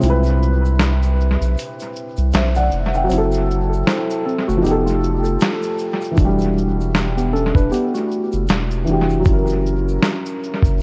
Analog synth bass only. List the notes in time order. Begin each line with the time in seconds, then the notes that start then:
0.03 C2
1.41 B1
2.18 C2
2.34 B1
2.73 F1
3.11 F#1
4.49 F#1
4.65 F1
6.19 E1
7.56 E1
8.34 F#1
8.49 E1
8.88 F1
9.26 F#1
10.63 F#1